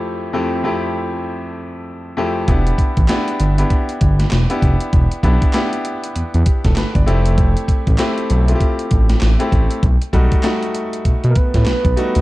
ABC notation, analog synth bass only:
X:1
M:4/4
L:1/16
Q:"Swing 16ths" 1/4=98
K:Ephr
V:1 name="Analog synth bass" clef=bass
z16 | E,,,2 z A,,, z2 G,,,2 z2 G,,,2 E,,, z F,,, z | E,,, z B,,, z4 z E,, E,, z E,,, G,,, G,,, F,,,2- | F,,,2 z A,,, z2 B,,,2 z2 A,,,2 A,,, z A,,, z |
B,,, z B,,, z4 z B,, B,, z A,, B,,, B,,, z ^D,, |]